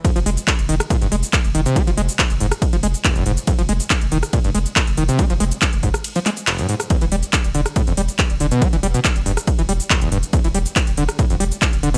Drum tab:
RD |x---x---x---x---|x---x---x---x---|x---x---x---x---|x---x---x---x---|
HH |xxoxxxoxxxoxxxox|xxoxxxoxxxoxxxox|xxoxxxoxxxoxxxox|xxoxxxoxxxoxxxox|
SH |xx-xxx-xxx-xxx-x|xx-xxx-xxx-xxx-x|xx-xxx-xxx-xxx-x|xx-xxx-xxx-xxx-x|
CP |----x-------x---|----x-------x---|----x-------x---|----x-----x-x---|
SD |-------r--------|-------r--------|-------r--------|-------r-------r|
BD |o---o---o---o---|o---o---o---o---|o---o---o---o---|o---o-o---------|

RD |x---x---x---x---|x---x---x---x---|x---x---x---x---|
HH |xxoxxxoxxxoxxxox|xxoxxxoxxxoxxxox|xxoxxxoxxxoxxxox|
SH |xx-xxx-xxx-xxx-x|xx-xxx-xxx-xxx-x|xx-xxx-xxx-xxx-x|
CP |----x-------x---|----x-------x---|----x-------x---|
SD |-------r--------|-------r--------|-------r--------|
BD |o---o---o---o---|o---o---o---o---|o---o---o---o---|